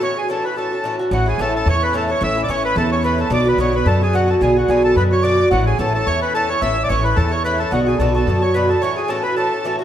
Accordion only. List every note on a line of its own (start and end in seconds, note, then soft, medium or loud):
0.03 0.17 C#5 loud
0.18 0.29 G#4 medium
0.30 0.45 A4 medium
0.45 0.56 B4 medium
0.57 0.96 A4 medium
1.13 1.27 F#4 medium
1.28 1.40 G#4 medium
1.41 1.54 A4 loud
1.56 1.68 A4 medium
1.69 1.83 C#5 loud
1.83 1.94 B4 medium
1.96 2.10 A4 medium
2.11 2.23 C#5 medium
2.23 2.42 E5 loud
2.43 2.49 D5 medium
2.50 2.63 C#5 medium
2.65 2.76 B4 loud
2.77 2.90 A4 loud
2.92 3.03 C#5 medium
3.04 3.19 B4 medium
3.20 3.31 A4 medium
3.33 3.48 D5 loud
3.48 3.59 B4 medium
3.60 3.75 C#5 medium
3.75 3.87 B4 medium
3.87 4.02 A4 loud
4.03 4.15 G#4 medium
4.15 4.29 F#4 loud
4.30 4.41 A4 medium
4.42 4.57 G#4 medium
4.58 4.70 F#4 medium
4.69 4.83 G#4 medium
4.84 4.96 A4 loud
4.97 5.03 B4 loud
5.12 5.23 C#5 medium
5.23 5.49 D5 loud
5.51 5.65 F#4 loud
5.66 5.78 G#4 medium
5.79 5.93 A4 medium
5.94 6.07 A4 medium
6.07 6.20 C#5 loud
6.22 6.33 B4 medium
6.34 6.49 A4 loud
6.48 6.62 C#5 medium
6.61 6.83 E5 loud
6.83 6.89 D5 medium
6.89 7.04 C#5 medium
7.04 7.17 B4 medium
7.16 7.31 A4 medium
7.31 7.43 C#5 medium
7.44 7.59 B4 loud
7.59 7.72 A4 medium
7.72 7.87 F#4 medium
7.87 7.99 G#4 medium
7.99 8.13 A4 medium
8.15 8.43 A4 medium
8.42 8.55 C#5 medium
8.54 8.69 B4 medium
8.69 8.82 A4 medium
8.81 8.97 C#5 loud
8.96 9.10 G#4 medium
9.09 9.23 A4 medium
9.23 9.35 B4 medium
9.36 9.76 A4 medium